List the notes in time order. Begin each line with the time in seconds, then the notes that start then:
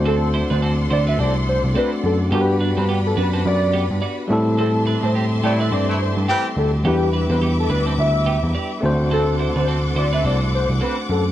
Already playing: D2 A3 C4 D4 F#4 A4 C5 D5 F#5 C6
0.06 C4 A4
0.34 E4 C5
0.50 D2 D4 B4 C5
0.62 C4 A4
0.91 D2 E4 C5 D5
1.07 D4 B4 E5
1.19 C2 C4 A4 D5
1.49 C5
1.64 C2
1.74 A3 C4 D4 F#4 A4 B4 D5
2.04 F#2 A4
2.30 G2 B3 D4 F#4 G4 B4 F#5 B5
2.35 A#4
2.41 B4
2.60 D4 B4
2.77 G2 C4 A4 B4
2.89 B3 G4
3.06 A4
3.17 F#2 D4 B4
3.33 C4 A4
3.45 F#2 D5
3.74 B3 G4
3.90 G2
4.02 F#4 D5
4.28 A2 G3 A3 C4 E4 G4 E5 A5 C6
4.33 A4
4.59 C4 A4
4.87 D4 B4
5.03 A2 C4 A4 C5
5.15 C4 G4
5.43 A2 C3 A3 B3 E4 G4 D5
5.60 D4 B4 E5
5.72 G2 C4 A4 D5
5.88 C3 A3 E4
6.01 C5
6.16 G2
6.28 E3 C4 G4 B4
6.57 D2 A4
6.83 E2 F#3 B3 D4 E4 G4 E5 B5 D6
6.88 G3 B4
7.13 D4 B4
7.30 E2 C4 A4 B4
7.42 B3 G4
7.59 A4
7.70 D2 D4 B4
7.86 C4 A4
7.98 D2 E5
8.26 B3 G4
8.43 E2
8.55 G4 D5
8.81 D2 A3 C4 D4 F#4 A4 F#5 C6 D6
8.86 C5
9.11 C4 A4
9.40 E4 C5
9.56 D2 D4 B4 C5
9.68 C4 A4
9.96 D2 E4 C5 D5
10.13 D4 B4 E5
10.24 C2 C4 A4 D5
10.54 C5
10.69 C2
10.81 C4 A4 B4
11.09 F#2 A4